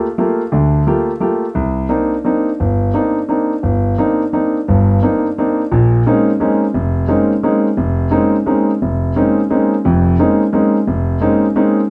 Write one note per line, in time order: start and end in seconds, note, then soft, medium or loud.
0.18 0.41 A3 soft
0.18 0.41 A#3 soft
0.18 0.41 F4 soft
0.18 0.41 G4 soft
0.52 0.82 D2 medium
0.52 0.82 D3 medium
0.87 1.10 A3 soft
0.87 1.10 A#3 soft
0.87 1.10 F4 soft
0.87 1.10 G4 medium
1.20 1.44 A3 soft
1.20 1.44 A#3 soft
1.20 1.45 F4 soft
1.20 1.44 G4 soft
1.55 1.85 C2 medium
1.89 2.13 A#3 medium
1.89 2.13 C4 soft
1.89 2.13 D4 soft
1.89 2.13 D#4 medium
2.25 2.48 A#3 soft
2.25 2.48 C4 soft
2.25 2.48 D4 soft
2.25 2.49 D#4 medium
2.60 2.90 G1 medium
2.94 3.17 A#3 soft
2.94 3.18 C4 soft
2.94 3.18 D4 soft
2.94 3.18 D#4 medium
3.29 3.52 A#3 soft
3.29 3.52 C4 soft
3.29 3.52 D4 soft
3.29 3.53 D#4 soft
3.63 3.93 G1 medium
3.98 4.22 A#3 medium
3.98 4.22 C4 soft
3.98 4.22 D4 soft
3.98 4.22 D#4 medium
4.33 4.56 A#3 soft
4.33 4.56 C4 soft
4.33 4.57 D4 soft
4.33 4.57 D#4 medium
4.68 4.98 G1 medium
4.68 4.98 G2 medium
5.03 5.26 A#3 medium
5.03 5.26 C4 soft
5.03 5.26 D4 soft
5.03 5.26 D#4 medium
5.38 5.61 A#3 soft
5.38 5.61 C4 soft
5.38 5.61 D4 soft
5.38 5.61 D#4 soft
5.72 6.01 A#1 medium
5.72 6.01 A#2 medium
6.06 6.29 G#3 soft
6.06 6.29 A#3 medium
6.06 6.30 C4 soft
6.06 6.30 C#4 soft
6.06 6.30 D#4 medium
6.40 6.63 G#3 medium
6.40 6.64 A#3 soft
6.40 6.64 C4 soft
6.40 6.64 C#4 soft
6.40 6.64 D#4 medium
6.74 7.04 F1 medium
7.08 7.32 G#3 soft
7.08 7.32 A#3 soft
7.08 7.32 C4 soft
7.08 7.32 C#4 soft
7.08 7.32 D#4 medium
7.43 7.67 G#3 medium
7.43 7.67 A#3 soft
7.43 7.67 C4 soft
7.43 7.67 C#4 soft
7.43 7.67 D#4 medium
7.77 8.08 F1 medium
8.11 8.35 G#3 medium
8.11 8.35 A#3 soft
8.11 8.35 C4 medium
8.11 8.35 C#4 soft
8.11 8.35 D#4 medium
8.46 8.70 G#3 soft
8.46 8.70 A#3 soft
8.46 8.70 C4 soft
8.46 8.70 C#4 soft
8.46 8.70 D#4 medium
8.82 9.12 F1 medium
9.16 9.39 G#3 soft
9.16 9.39 A#3 soft
9.16 9.39 C4 soft
9.16 9.39 C#4 soft
9.16 9.39 D#4 medium
9.50 9.73 G#3 soft
9.50 9.73 A#3 soft
9.50 9.73 C4 soft
9.50 9.74 C#4 soft
9.50 9.73 D#4 medium
9.85 10.14 F1 medium
9.85 10.14 F2 medium
10.19 10.42 G#3 medium
10.19 10.42 A#3 soft
10.19 10.42 C4 soft
10.19 10.42 C#4 soft
10.19 10.42 D#4 medium
10.53 10.76 G#3 medium
10.53 10.76 A#3 soft
10.53 10.76 C4 soft
10.53 10.76 C#4 soft
10.53 10.77 D#4 medium
10.87 11.17 F1 medium
11.21 11.44 G#3 medium
11.21 11.45 A#3 soft
11.21 11.45 C4 medium
11.21 11.45 C#4 soft
11.21 11.45 D#4 medium
11.56 11.79 G#3 medium
11.56 11.79 A#3 soft
11.56 11.79 C4 soft
11.56 11.79 C#4 soft
11.56 11.79 D#4 medium